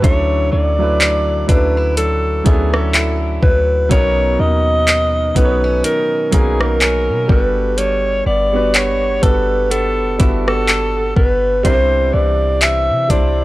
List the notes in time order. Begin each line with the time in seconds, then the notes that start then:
Already playing: B3 F#4 A4
0.02 D2 D3 F#3 C#4 D4 E4 A4 C#5, kick, closed hi-hat
0.52 D2 F#3 D5
0.79 F#3 A3 D4 E4 B4
1.01 clap, closed hi-hat
1.47 D2 F#3 C#4 D4 E4 A4 B4, kick, closed hi-hat
1.77 E4
1.97 F#3 A4, closed hi-hat
2.44 D2 F#3 B3 C#4 D4 E4 G#4 A4, kick, closed hi-hat
2.74 C#4 A4, cross-stick
2.94 E4, clap, closed hi-hat
3.42 D2 F#3 B4, kick
3.89 B1 B2 F#3 B3 C#4 D#4 A#4 C#5, kick, closed hi-hat
4.39 D#2 D#3 D#5
4.87 clap, closed hi-hat
5.35 B1 F#3 B3 C#4 D#4 A4 B4, kick, closed hi-hat
5.45 C#5
5.64 C#4
5.84 D#3 A#4, closed hi-hat
6.31 B1 F#3 A#3 B3 C#4 D#4 G#4 A#4, kick, closed hi-hat
6.61 A#4, cross-stick
6.81 C#4, clap, closed hi-hat
7.09 B2
7.28 G1 G3 B3 D4 F#4 A4 B4, kick
7.78 G3 C#5, closed hi-hat
8.26 G1 B3 D5
8.53 G3 B3 D4 F#4 B4
8.74 F#4 C#5, clap, closed hi-hat
9.21 G1 G3 B3 D4 F#4 A4 B4, kick, closed hi-hat
9.71 B3 A4, closed hi-hat
10.00 F#1
10.18 G1 G3 B3 D4 E4 F#4 A4, kick, closed hi-hat
10.48 F#4 A4, cross-stick
10.68 A4, clap, closed hi-hat
11.16 G1 B3 B4, kick
11.63 C2 C3 G3 C4 D4 E4 A#4 C5, kick, closed hi-hat
11.73 C5
12.13 C2 E3 D5
12.61 E5, clap, closed hi-hat
12.90 C3
13.08 C2 G3 C4 D4 E4 C5 D5, kick, closed hi-hat